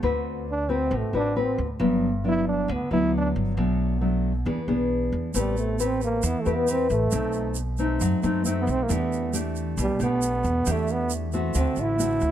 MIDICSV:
0, 0, Header, 1, 5, 480
1, 0, Start_track
1, 0, Key_signature, 1, "minor"
1, 0, Tempo, 443131
1, 31, Time_signature, 4, 2, 24, 8
1, 13337, End_track
2, 0, Start_track
2, 0, Title_t, "Nylon-string guitar"
2, 0, Program_c, 0, 24
2, 28, Note_on_c, 0, 50, 52
2, 32, Note_on_c, 0, 60, 57
2, 32, Note_on_c, 0, 66, 55
2, 41, Note_on_c, 0, 71, 62
2, 507, Note_off_c, 0, 60, 0
2, 510, Note_off_c, 0, 66, 0
2, 512, Note_off_c, 0, 71, 0
2, 745, Note_on_c, 0, 60, 57
2, 751, Note_on_c, 0, 66, 54
2, 756, Note_on_c, 0, 71, 67
2, 967, Note_off_c, 0, 50, 0
2, 983, Note_on_c, 0, 45, 52
2, 1191, Note_off_c, 0, 60, 0
2, 1193, Note_off_c, 0, 66, 0
2, 1196, Note_off_c, 0, 71, 0
2, 1229, Note_on_c, 0, 60, 59
2, 1234, Note_on_c, 0, 66, 58
2, 1241, Note_on_c, 0, 71, 65
2, 1432, Note_off_c, 0, 60, 0
2, 1435, Note_off_c, 0, 66, 0
2, 1438, Note_off_c, 0, 71, 0
2, 1473, Note_on_c, 0, 60, 59
2, 1478, Note_on_c, 0, 66, 54
2, 1478, Note_on_c, 0, 71, 63
2, 1796, Note_off_c, 0, 60, 0
2, 1797, Note_off_c, 0, 66, 0
2, 1798, Note_off_c, 0, 71, 0
2, 1924, Note_off_c, 0, 45, 0
2, 1943, Note_on_c, 0, 43, 55
2, 1946, Note_on_c, 0, 54, 56
2, 1949, Note_on_c, 0, 59, 57
2, 1958, Note_on_c, 0, 62, 66
2, 2257, Note_off_c, 0, 54, 0
2, 2260, Note_off_c, 0, 59, 0
2, 2265, Note_off_c, 0, 62, 0
2, 2427, Note_on_c, 0, 54, 51
2, 2434, Note_on_c, 0, 62, 62
2, 2436, Note_on_c, 0, 59, 50
2, 2885, Note_off_c, 0, 43, 0
2, 2905, Note_on_c, 0, 50, 54
2, 2908, Note_off_c, 0, 54, 0
2, 2910, Note_off_c, 0, 59, 0
2, 2911, Note_off_c, 0, 62, 0
2, 3148, Note_on_c, 0, 54, 62
2, 3152, Note_on_c, 0, 59, 61
2, 3160, Note_on_c, 0, 62, 62
2, 3833, Note_off_c, 0, 54, 0
2, 3834, Note_off_c, 0, 59, 0
2, 3839, Note_off_c, 0, 62, 0
2, 3846, Note_off_c, 0, 50, 0
2, 3867, Note_on_c, 0, 47, 55
2, 3872, Note_on_c, 0, 54, 55
2, 3878, Note_on_c, 0, 57, 51
2, 3879, Note_on_c, 0, 62, 62
2, 4314, Note_off_c, 0, 54, 0
2, 4314, Note_off_c, 0, 57, 0
2, 4318, Note_off_c, 0, 62, 0
2, 4345, Note_on_c, 0, 54, 52
2, 4347, Note_on_c, 0, 57, 55
2, 4352, Note_on_c, 0, 62, 60
2, 4672, Note_off_c, 0, 54, 0
2, 4673, Note_off_c, 0, 57, 0
2, 4676, Note_off_c, 0, 62, 0
2, 4808, Note_off_c, 0, 47, 0
2, 4825, Note_on_c, 0, 59, 48
2, 4826, Note_on_c, 0, 52, 55
2, 4831, Note_on_c, 0, 62, 55
2, 4839, Note_on_c, 0, 68, 57
2, 4969, Note_off_c, 0, 59, 0
2, 4974, Note_off_c, 0, 62, 0
2, 4978, Note_off_c, 0, 68, 0
2, 5067, Note_on_c, 0, 59, 58
2, 5072, Note_on_c, 0, 62, 62
2, 5077, Note_on_c, 0, 68, 57
2, 5752, Note_off_c, 0, 59, 0
2, 5755, Note_off_c, 0, 62, 0
2, 5757, Note_off_c, 0, 68, 0
2, 5766, Note_off_c, 0, 52, 0
2, 5789, Note_on_c, 0, 57, 55
2, 5792, Note_on_c, 0, 60, 49
2, 5801, Note_on_c, 0, 67, 52
2, 5803, Note_on_c, 0, 71, 62
2, 6236, Note_off_c, 0, 60, 0
2, 6237, Note_off_c, 0, 67, 0
2, 6240, Note_off_c, 0, 71, 0
2, 6277, Note_on_c, 0, 60, 49
2, 6280, Note_on_c, 0, 67, 56
2, 6286, Note_on_c, 0, 71, 59
2, 6727, Note_off_c, 0, 57, 0
2, 6747, Note_on_c, 0, 52, 53
2, 6753, Note_off_c, 0, 60, 0
2, 6753, Note_off_c, 0, 67, 0
2, 6757, Note_off_c, 0, 71, 0
2, 6989, Note_on_c, 0, 60, 58
2, 6995, Note_on_c, 0, 67, 63
2, 7001, Note_on_c, 0, 71, 63
2, 7193, Note_off_c, 0, 60, 0
2, 7196, Note_off_c, 0, 67, 0
2, 7198, Note_off_c, 0, 71, 0
2, 7232, Note_on_c, 0, 60, 50
2, 7239, Note_on_c, 0, 67, 55
2, 7244, Note_on_c, 0, 71, 60
2, 7542, Note_off_c, 0, 60, 0
2, 7546, Note_off_c, 0, 67, 0
2, 7548, Note_off_c, 0, 71, 0
2, 7687, Note_off_c, 0, 52, 0
2, 7701, Note_on_c, 0, 47, 53
2, 7707, Note_on_c, 0, 57, 57
2, 7712, Note_on_c, 0, 60, 58
2, 7718, Note_on_c, 0, 63, 61
2, 8186, Note_off_c, 0, 57, 0
2, 8191, Note_off_c, 0, 60, 0
2, 8192, Note_off_c, 0, 63, 0
2, 8433, Note_on_c, 0, 57, 58
2, 8443, Note_on_c, 0, 60, 60
2, 8447, Note_on_c, 0, 63, 67
2, 8645, Note_off_c, 0, 47, 0
2, 8683, Note_on_c, 0, 54, 54
2, 8875, Note_off_c, 0, 57, 0
2, 8881, Note_off_c, 0, 60, 0
2, 8881, Note_off_c, 0, 63, 0
2, 8916, Note_on_c, 0, 57, 62
2, 8923, Note_on_c, 0, 60, 61
2, 8926, Note_on_c, 0, 63, 65
2, 9117, Note_off_c, 0, 57, 0
2, 9120, Note_off_c, 0, 60, 0
2, 9121, Note_off_c, 0, 63, 0
2, 9157, Note_on_c, 0, 57, 52
2, 9166, Note_on_c, 0, 60, 55
2, 9170, Note_on_c, 0, 63, 58
2, 9614, Note_off_c, 0, 54, 0
2, 9614, Note_off_c, 0, 57, 0
2, 9619, Note_off_c, 0, 60, 0
2, 9623, Note_off_c, 0, 63, 0
2, 9626, Note_on_c, 0, 52, 59
2, 9629, Note_on_c, 0, 57, 61
2, 9630, Note_on_c, 0, 62, 57
2, 9635, Note_on_c, 0, 67, 62
2, 10072, Note_off_c, 0, 57, 0
2, 10074, Note_off_c, 0, 62, 0
2, 10075, Note_off_c, 0, 67, 0
2, 10107, Note_on_c, 0, 57, 55
2, 10114, Note_on_c, 0, 62, 52
2, 10114, Note_on_c, 0, 67, 62
2, 10566, Note_off_c, 0, 52, 0
2, 10596, Note_on_c, 0, 47, 54
2, 10793, Note_off_c, 0, 57, 0
2, 10794, Note_off_c, 0, 62, 0
2, 10795, Note_off_c, 0, 67, 0
2, 10828, Note_on_c, 0, 57, 66
2, 10832, Note_on_c, 0, 62, 59
2, 10842, Note_on_c, 0, 67, 66
2, 11512, Note_off_c, 0, 57, 0
2, 11515, Note_off_c, 0, 62, 0
2, 11516, Note_off_c, 0, 67, 0
2, 11531, Note_off_c, 0, 47, 0
2, 11556, Note_on_c, 0, 52, 58
2, 11558, Note_on_c, 0, 57, 57
2, 11563, Note_on_c, 0, 67, 69
2, 11566, Note_on_c, 0, 62, 56
2, 12236, Note_off_c, 0, 57, 0
2, 12238, Note_off_c, 0, 62, 0
2, 12240, Note_off_c, 0, 67, 0
2, 12278, Note_on_c, 0, 57, 60
2, 12281, Note_on_c, 0, 60, 59
2, 12287, Note_on_c, 0, 66, 71
2, 12492, Note_off_c, 0, 52, 0
2, 12510, Note_on_c, 0, 50, 57
2, 12957, Note_off_c, 0, 57, 0
2, 12958, Note_off_c, 0, 60, 0
2, 12962, Note_off_c, 0, 66, 0
2, 12985, Note_on_c, 0, 57, 58
2, 12991, Note_on_c, 0, 60, 55
2, 12996, Note_on_c, 0, 66, 66
2, 13311, Note_off_c, 0, 57, 0
2, 13314, Note_off_c, 0, 60, 0
2, 13317, Note_off_c, 0, 66, 0
2, 13337, Note_off_c, 0, 50, 0
2, 13337, End_track
3, 0, Start_track
3, 0, Title_t, "Trombone"
3, 0, Program_c, 1, 57
3, 557, Note_on_c, 1, 62, 82
3, 774, Note_on_c, 1, 60, 82
3, 791, Note_off_c, 1, 62, 0
3, 1058, Note_on_c, 1, 57, 62
3, 1074, Note_off_c, 1, 60, 0
3, 1258, Note_off_c, 1, 57, 0
3, 1264, Note_on_c, 1, 62, 88
3, 1523, Note_on_c, 1, 60, 74
3, 1539, Note_off_c, 1, 62, 0
3, 1738, Note_off_c, 1, 60, 0
3, 2480, Note_on_c, 1, 64, 94
3, 2681, Note_off_c, 1, 64, 0
3, 2697, Note_on_c, 1, 62, 84
3, 2954, Note_on_c, 1, 59, 69
3, 2970, Note_off_c, 1, 62, 0
3, 3167, Note_off_c, 1, 59, 0
3, 3174, Note_on_c, 1, 64, 92
3, 3387, Note_off_c, 1, 64, 0
3, 3446, Note_on_c, 1, 62, 76
3, 3574, Note_off_c, 1, 62, 0
3, 5844, Note_on_c, 1, 55, 70
3, 6044, Note_off_c, 1, 55, 0
3, 6058, Note_on_c, 1, 57, 73
3, 6320, Note_on_c, 1, 60, 81
3, 6336, Note_off_c, 1, 57, 0
3, 6537, Note_off_c, 1, 60, 0
3, 6545, Note_on_c, 1, 58, 81
3, 6787, Note_on_c, 1, 59, 85
3, 6803, Note_off_c, 1, 58, 0
3, 6950, Note_on_c, 1, 57, 73
3, 6966, Note_off_c, 1, 59, 0
3, 7108, Note_on_c, 1, 59, 78
3, 7124, Note_off_c, 1, 57, 0
3, 7273, Note_on_c, 1, 60, 87
3, 7290, Note_off_c, 1, 59, 0
3, 7484, Note_off_c, 1, 60, 0
3, 7491, Note_on_c, 1, 57, 83
3, 8159, Note_off_c, 1, 57, 0
3, 9327, Note_on_c, 1, 59, 76
3, 9434, Note_on_c, 1, 60, 96
3, 9450, Note_off_c, 1, 59, 0
3, 9569, Note_on_c, 1, 58, 70
3, 9585, Note_off_c, 1, 60, 0
3, 9696, Note_on_c, 1, 59, 81
3, 9712, Note_off_c, 1, 58, 0
3, 10145, Note_off_c, 1, 59, 0
3, 10641, Note_on_c, 1, 55, 75
3, 10842, Note_off_c, 1, 55, 0
3, 10870, Note_on_c, 1, 59, 89
3, 11611, Note_on_c, 1, 57, 78
3, 11627, Note_off_c, 1, 59, 0
3, 11826, Note_on_c, 1, 59, 90
3, 11843, Note_off_c, 1, 57, 0
3, 12050, Note_off_c, 1, 59, 0
3, 12547, Note_on_c, 1, 60, 79
3, 12788, Note_on_c, 1, 64, 97
3, 12805, Note_off_c, 1, 60, 0
3, 13337, Note_off_c, 1, 64, 0
3, 13337, End_track
4, 0, Start_track
4, 0, Title_t, "Upright bass"
4, 0, Program_c, 2, 32
4, 32, Note_on_c, 2, 38, 94
4, 949, Note_off_c, 2, 38, 0
4, 986, Note_on_c, 2, 33, 93
4, 1101, Note_off_c, 2, 33, 0
4, 1225, Note_on_c, 2, 33, 80
4, 1675, Note_off_c, 2, 33, 0
4, 1715, Note_on_c, 2, 38, 84
4, 1937, Note_off_c, 2, 38, 0
4, 1946, Note_on_c, 2, 31, 90
4, 2867, Note_off_c, 2, 31, 0
4, 2917, Note_on_c, 2, 38, 99
4, 3027, Note_off_c, 2, 38, 0
4, 3151, Note_on_c, 2, 38, 77
4, 3599, Note_off_c, 2, 38, 0
4, 3638, Note_on_c, 2, 31, 85
4, 3859, Note_off_c, 2, 31, 0
4, 3871, Note_on_c, 2, 35, 92
4, 4789, Note_off_c, 2, 35, 0
4, 4833, Note_on_c, 2, 40, 91
4, 4945, Note_off_c, 2, 40, 0
4, 5067, Note_on_c, 2, 35, 80
4, 5517, Note_off_c, 2, 35, 0
4, 5551, Note_on_c, 2, 40, 84
4, 5775, Note_off_c, 2, 40, 0
4, 5788, Note_on_c, 2, 33, 86
4, 6708, Note_off_c, 2, 33, 0
4, 6749, Note_on_c, 2, 40, 91
4, 6863, Note_off_c, 2, 40, 0
4, 6998, Note_on_c, 2, 40, 83
4, 7443, Note_off_c, 2, 40, 0
4, 7475, Note_on_c, 2, 33, 86
4, 7698, Note_off_c, 2, 33, 0
4, 7718, Note_on_c, 2, 35, 90
4, 8633, Note_off_c, 2, 35, 0
4, 8676, Note_on_c, 2, 42, 98
4, 8787, Note_off_c, 2, 42, 0
4, 8919, Note_on_c, 2, 42, 87
4, 9363, Note_off_c, 2, 42, 0
4, 9394, Note_on_c, 2, 35, 87
4, 9617, Note_off_c, 2, 35, 0
4, 9638, Note_on_c, 2, 40, 93
4, 10552, Note_off_c, 2, 40, 0
4, 10588, Note_on_c, 2, 35, 92
4, 10702, Note_off_c, 2, 35, 0
4, 10830, Note_on_c, 2, 35, 83
4, 11278, Note_off_c, 2, 35, 0
4, 11313, Note_on_c, 2, 40, 87
4, 11537, Note_off_c, 2, 40, 0
4, 11555, Note_on_c, 2, 40, 96
4, 12471, Note_off_c, 2, 40, 0
4, 12514, Note_on_c, 2, 38, 93
4, 12625, Note_off_c, 2, 38, 0
4, 12749, Note_on_c, 2, 33, 81
4, 13197, Note_off_c, 2, 33, 0
4, 13232, Note_on_c, 2, 38, 89
4, 13337, Note_off_c, 2, 38, 0
4, 13337, End_track
5, 0, Start_track
5, 0, Title_t, "Drums"
5, 5789, Note_on_c, 9, 82, 64
5, 5897, Note_off_c, 9, 82, 0
5, 6034, Note_on_c, 9, 82, 28
5, 6142, Note_off_c, 9, 82, 0
5, 6275, Note_on_c, 9, 82, 62
5, 6384, Note_off_c, 9, 82, 0
5, 6514, Note_on_c, 9, 82, 26
5, 6623, Note_off_c, 9, 82, 0
5, 6744, Note_on_c, 9, 82, 58
5, 6852, Note_off_c, 9, 82, 0
5, 6994, Note_on_c, 9, 82, 24
5, 7102, Note_off_c, 9, 82, 0
5, 7232, Note_on_c, 9, 82, 67
5, 7340, Note_off_c, 9, 82, 0
5, 7473, Note_on_c, 9, 82, 27
5, 7581, Note_off_c, 9, 82, 0
5, 7705, Note_on_c, 9, 82, 66
5, 7813, Note_off_c, 9, 82, 0
5, 7937, Note_on_c, 9, 82, 27
5, 8045, Note_off_c, 9, 82, 0
5, 8175, Note_on_c, 9, 82, 60
5, 8284, Note_off_c, 9, 82, 0
5, 8423, Note_on_c, 9, 82, 27
5, 8531, Note_off_c, 9, 82, 0
5, 8673, Note_on_c, 9, 82, 58
5, 8781, Note_off_c, 9, 82, 0
5, 8915, Note_on_c, 9, 82, 25
5, 9023, Note_off_c, 9, 82, 0
5, 9156, Note_on_c, 9, 82, 65
5, 9264, Note_off_c, 9, 82, 0
5, 9396, Note_on_c, 9, 82, 26
5, 9504, Note_off_c, 9, 82, 0
5, 9636, Note_on_c, 9, 82, 62
5, 9744, Note_off_c, 9, 82, 0
5, 9885, Note_on_c, 9, 82, 28
5, 9994, Note_off_c, 9, 82, 0
5, 10115, Note_on_c, 9, 82, 66
5, 10223, Note_off_c, 9, 82, 0
5, 10351, Note_on_c, 9, 82, 27
5, 10459, Note_off_c, 9, 82, 0
5, 10594, Note_on_c, 9, 82, 57
5, 10702, Note_off_c, 9, 82, 0
5, 10833, Note_on_c, 9, 82, 24
5, 10941, Note_off_c, 9, 82, 0
5, 11069, Note_on_c, 9, 82, 66
5, 11178, Note_off_c, 9, 82, 0
5, 11308, Note_on_c, 9, 82, 27
5, 11417, Note_off_c, 9, 82, 0
5, 11546, Note_on_c, 9, 82, 65
5, 11654, Note_off_c, 9, 82, 0
5, 11780, Note_on_c, 9, 82, 27
5, 11888, Note_off_c, 9, 82, 0
5, 12023, Note_on_c, 9, 82, 64
5, 12132, Note_off_c, 9, 82, 0
5, 12267, Note_on_c, 9, 82, 28
5, 12375, Note_off_c, 9, 82, 0
5, 12501, Note_on_c, 9, 82, 60
5, 12610, Note_off_c, 9, 82, 0
5, 12739, Note_on_c, 9, 82, 26
5, 12848, Note_off_c, 9, 82, 0
5, 12994, Note_on_c, 9, 82, 62
5, 13103, Note_off_c, 9, 82, 0
5, 13222, Note_on_c, 9, 82, 25
5, 13330, Note_off_c, 9, 82, 0
5, 13337, End_track
0, 0, End_of_file